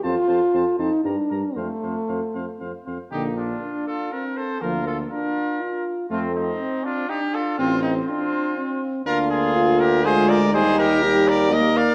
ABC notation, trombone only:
X:1
M:3/4
L:1/8
Q:1/4=121
K:Bb
V:1 name="Trombone"
C C C C G, G, | C C C C C C | D, z4 z | F, z4 z |
A, z4 z | C z4 z | [K:Eb] B,4 A,2 | G,2 G,2 B,2 |]